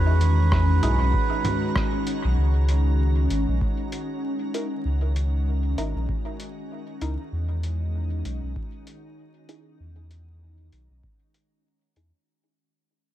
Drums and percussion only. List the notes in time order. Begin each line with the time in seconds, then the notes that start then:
0.21 closed hi-hat
0.52 kick, cross-stick
0.83 closed hi-hat, low conga
1.14 kick
1.45 closed hi-hat, low conga
1.76 kick, cross-stick
2.07 closed hi-hat
2.69 closed hi-hat
3.30 closed hi-hat
3.61 kick
3.92 closed hi-hat
4.54 closed hi-hat
5.16 closed hi-hat
5.78 closed hi-hat
6.09 kick
6.40 closed hi-hat
7.01 closed hi-hat
7.63 closed hi-hat
8.25 closed hi-hat
8.56 kick
8.87 closed hi-hat
9.49 closed hi-hat
10.11 closed hi-hat
10.73 closed hi-hat
11.04 kick
11.34 closed hi-hat
11.96 closed hi-hat